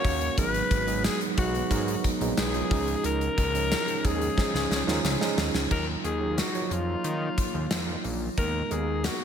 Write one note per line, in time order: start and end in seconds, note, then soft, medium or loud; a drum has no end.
0.00 0.34 A#3 medium
0.00 0.40 A#3 medium
0.00 0.34 C#4 medium
0.00 0.40 C#4 medium
0.00 0.34 F#4 medium
0.00 0.40 F#4 medium
0.00 0.39 G#4 medium
0.00 0.38 C#5 loud
0.04 0.29 D#2 medium
0.04 kick loud
0.04 open hi-hat medium
0.04 tambourine soft
0.21 closed hi-hat medium
0.37 0.63 G#1 loud
0.37 0.72 F#3 medium
0.37 0.72 G#3 medium
0.37 2.69 G#3 medium
0.37 0.72 B3 medium
0.37 2.69 B3 medium
0.37 5.67 D#4 medium
0.37 0.72 D#4 medium
0.37 2.69 F#4 medium
0.37 0.72 G#4 medium
0.37 1.01 B4 loud
0.37 kick loud
0.37 closed hi-hat medium
0.37 tambourine medium
0.54 closed hi-hat medium
0.71 1.08 G#1 loud
0.71 kick loud
0.71 closed hi-hat medium
0.71 tambourine soft
0.87 1.21 F#3 medium
0.87 1.22 G#3 medium
0.87 1.22 B3 medium
0.87 1.22 D#4 medium
0.87 1.22 G#4 medium
0.87 closed hi-hat medium
1.04 1.20 G#4 medium
1.04 snare loud
1.04 tambourine medium
1.21 closed hi-hat medium
1.37 1.63 B1 medium
1.37 1.60 F#3 medium
1.37 1.61 G#3 medium
1.37 1.61 B3 medium
1.37 1.61 D#4 medium
1.37 2.07 F#4 loud
1.37 1.61 B4 medium
1.37 kick loud
1.37 closed hi-hat medium
1.37 tambourine medium
1.55 closed hi-hat medium
1.70 1.96 G#2 loud
1.70 2.05 F#3 medium
1.70 2.05 G#3 medium
1.70 2.05 B3 medium
1.70 2.05 D#4 medium
1.70 2.06 A#4 medium
1.70 kick medium
1.70 closed hi-hat medium
1.88 closed hi-hat medium
2.04 kick medium
2.04 closed hi-hat medium
2.04 tambourine soft
2.21 2.33 A#1 medium
2.21 2.44 F#3 medium
2.21 2.44 G#3 medium
2.21 2.44 B3 medium
2.21 2.44 D#4 medium
2.21 2.44 G#4 medium
2.21 closed hi-hat medium
2.37 2.63 B1 loud
2.37 3.01 G#4 medium
2.37 snare loud
2.37 tambourine medium
2.54 2.71 F#3 medium
2.54 2.70 G#3 medium
2.54 2.71 B3 medium
2.54 2.71 D#4 medium
2.54 2.72 F4 medium
2.54 closed hi-hat soft
2.71 2.96 C#2 loud
2.71 5.68 C#3 medium
2.71 3.38 F3 medium
2.71 3.38 G#3 medium
2.71 5.68 C#4 medium
2.71 3.38 C#4 medium
2.71 3.38 D#4 medium
2.71 5.68 F4 medium
2.71 3.38 G#4 medium
2.71 kick loud
2.71 open hi-hat medium
2.71 tambourine soft
2.88 closed hi-hat medium
3.04 3.29 C#2 loud
3.04 4.07 A#4 loud
3.04 closed hi-hat medium
3.04 tambourine medium
3.21 closed hi-hat medium
3.38 3.75 C#2 loud
3.38 kick medium
3.38 closed hi-hat medium
3.54 3.88 F3 medium
3.54 3.89 G#3 medium
3.54 3.89 C#4 medium
3.54 3.89 D#4 medium
3.54 3.89 G#4 medium
3.54 closed hi-hat medium
3.71 snare loud
3.71 tambourine medium
3.88 closed hi-hat medium
4.04 4.30 D#2 medium
4.04 4.27 F3 medium
4.04 4.27 G#3 medium
4.04 4.27 C#4 medium
4.04 4.27 D#4 medium
4.04 4.28 G#4 medium
4.04 5.39 G#4 medium
4.04 kick loud
4.04 closed hi-hat medium
4.04 tambourine medium
4.21 closed hi-hat medium
4.37 4.72 F3 medium
4.37 4.72 G#3 medium
4.37 4.72 C#4 medium
4.37 4.72 D#4 medium
4.37 4.72 G#4 medium
4.37 kick medium
4.37 snare medium
4.37 tambourine soft
4.54 4.67 C#2 medium
4.54 snare medium
4.71 4.83 C#2 loud
4.71 snare medium
4.71 tambourine soft
4.87 5.00 D#2 medium
4.87 5.10 F3 medium
4.87 5.10 G#3 medium
4.87 5.11 C#4 medium
4.87 5.11 D#4 medium
4.87 5.11 F4 loud
4.87 snare medium
5.04 5.17 C#2 medium
5.04 snare medium
5.04 tambourine medium
5.20 5.55 F3 medium
5.20 5.55 G#3 medium
5.20 5.55 C#4 medium
5.20 5.55 D#4 medium
5.20 5.56 G#4 loud
5.20 snare medium
5.38 5.50 D#2 medium
5.38 snare loud
5.38 tambourine medium
5.54 5.67 C#2 medium
5.54 snare medium
5.70 5.96 D#2 loud
5.70 8.35 D#3 medium
5.70 6.05 F#3 medium
5.70 8.35 A#3 medium
5.70 6.05 D#4 medium
5.70 8.35 D#4 medium
5.70 6.05 F4 medium
5.70 8.35 F4 medium
5.70 6.06 A#4 medium
5.70 5.87 A#4 medium
5.70 kick loud
5.70 crash medium
6.04 6.42 D#2 medium
6.04 6.40 G#4 loud
6.04 closed hi-hat medium
6.20 6.44 F#3 medium
6.20 6.44 D#4 medium
6.20 6.44 F4 medium
6.20 6.44 G#4 medium
6.38 6.65 F#4 medium
6.38 snare medium
6.38 closed hi-hat medium
6.54 7.45 F3 medium
6.54 7.46 D#4 medium
6.54 7.46 F4 medium
6.54 7.46 C#5 medium
6.54 closed hi-hat soft
6.65 6.73 F#4 medium
6.71 6.96 F2 medium
6.71 8.05 F4 medium
6.71 closed hi-hat medium
7.04 7.29 D#3 loud
7.04 closed hi-hat medium
7.38 kick medium
7.38 closed hi-hat medium
7.54 7.67 D#2 medium
7.71 7.96 F2 medium
7.71 snare loud
7.71 closed hi-hat medium
8.04 8.29 A#1 medium
8.04 open hi-hat medium
8.37 8.63 D#2 loud
8.37 8.60 G#3 medium
8.37 9.24 G#3 medium
8.37 8.61 B3 medium
8.37 9.24 B3 medium
8.37 8.61 D#4 medium
8.37 9.24 A#4 medium
8.37 8.73 A#4 medium
8.37 8.61 A#4 medium
8.37 kick loud
8.37 closed hi-hat medium
8.70 9.09 D#2 medium
8.70 9.16 G#3 medium
8.70 9.16 B3 medium
8.70 9.17 D#4 medium
8.70 9.07 G#4 medium
8.70 9.17 A#4 medium
8.70 closed hi-hat medium
9.04 9.24 F#4 medium
9.04 snare loud
9.04 closed hi-hat medium